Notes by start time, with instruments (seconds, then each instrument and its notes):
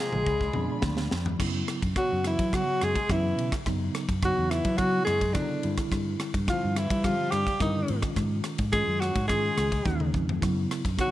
Already playing: tine electric piano C3 F3 A#3 F4, string section D#3 C5 G5 A#5, alto saxophone G#4
0.01 tenor saxophone G#3
0.12 fingered electric bass A#1, mid tom
0.25 fingered electric bass C#2, string section F4 D5 B5, kick
0.41 kick
0.53 fingered electric bass F2, tine electric piano F3 G#3 B3 D4, mid tom
0.82 fingered electric bass D2, kick, snare
0.97 snare
1.11 fingered electric bass F2, snare
1.26 floor tom
1.39 fingered electric bass F#2, tine electric piano C#3 F#3 B3 E4, kick, cross-stick, crash
1.68 cross-stick, ride
1.82 fingered electric bass F#2, kick, ride
1.96 tine electric piano C#3 F#3 B3 F#4, tenor saxophone F#3, alto saxophone F#4, kick, cross-stick, ride
2.12 fingered electric bass F#2
2.24 tenor saxophone E3, alto saxophone E4, cross-stick, ride
2.39 fingered electric bass F#3, kick, ride
2.53 tine electric piano C#3 F#3 B3 F#4, alto saxophone F#4, kick, cross-stick, ride
2.57 tenor saxophone F#3
2.81 fingered electric bass F#2, tenor saxophone G#3, alto saxophone G#4, cross-stick, ride
2.96 kick, ride
3.09 fingered electric bass F#2, tine electric piano C#3 F#3 B3 C#4, tenor saxophone E3, alto saxophone E4, kick, cross-stick, ride
3.37 fingered electric bass B2, ride
3.52 kick, cross-stick, ride
3.66 fingered electric bass F#2, tine electric piano C#3 F#3 B3 D#4, kick, cross-stick, ride
3.95 cross-stick, ride
4.09 fingered electric bass F#2, kick, ride
4.23 tine electric piano C#3 F#3 B3 D#4, tenor saxophone F#3, alto saxophone F#4, kick, cross-stick, ride
4.38 fingered electric bass E2
4.50 tenor saxophone E3, alto saxophone E4, cross-stick, ride
4.65 fingered electric bass F#3, kick, ride
4.77 tine electric piano C#3 F#3 B3 E4, tenor saxophone F#3, alto saxophone F#4, kick, cross-stick, ride
5.04 fingered electric bass F#2, tenor saxophone G#3, alto saxophone G#4, cross-stick, ride
5.21 kick, ride
5.34 tine electric piano C#3 F#3 B3 E4, tenor saxophone D3, fingered electric bass F#3, alto saxophone D4, kick, cross-stick, ride
5.63 fingered electric bass G2, tine electric piano D3 G3 C4 E4, ride
5.78 kick, cross-stick, ride
5.92 fingered electric bass G2, kick, cross-stick, ride
6.20 cross-stick, ride
6.34 fingered electric bass G2, kick, ride
6.47 tine electric piano D3 G3 C4 E4, tenor saxophone F3, alto saxophone F4, kick, cross-stick, ride
6.64 fingered electric bass G2
6.76 tenor saxophone E3, alto saxophone E4, cross-stick, ride
6.90 fingered electric bass G3, kick, ride
7.03 tine electric piano D3 G3 C4 G4, tenor saxophone F3, alto saxophone F4, kick, cross-stick, ride
7.31 fingered electric bass G2, tenor saxophone G3, alto saxophone G4, cross-stick, ride
7.47 kick, ride
7.60 fingered electric bass G2, tine electric piano D3 G3 C4 E4, tenor saxophone D#3, alto saxophone D#4, kick, cross-stick, ride
7.88 fingered electric bass G#2, tine electric piano D#3 G#3 C#4 F4, ride
8.02 kick, cross-stick, ride
8.16 fingered electric bass G#2, kick, cross-stick, ride
8.44 cross-stick, ride
8.58 fingered electric bass G#2, kick, ride
8.72 tine electric piano D#3 G#3 C#4 F4, tenor saxophone G#3, alto saxophone G#4, kick, cross-stick, ride
8.87 fingered electric bass F#2
9.00 tenor saxophone F#3, alto saxophone F#4, cross-stick, ride
9.16 fingered electric bass G#2, kick, ride
9.28 tine electric piano D#3 G#3 C#4 F4, tenor saxophone G#3, alto saxophone G#4, kick, cross-stick, ride
9.57 fingered electric bass C#2, cross-stick, ride
9.72 kick, ride
9.85 fingered electric bass D#2, tine electric piano D#3 G#3 C#4 D#4, kick, high tom
10.00 mid tom
10.14 fingered electric bass F2, kick
10.29 floor tom
10.41 fingered electric bass F#2, tine electric piano C#3 F#3 B3 E4, kick, cross-stick, ride
10.71 cross-stick, ride
10.85 fingered electric bass F#2, kick, ride
10.97 tine electric piano C#3 F#3 B3 D#4, tenor saxophone F#3, alto saxophone F#4, kick, cross-stick, ride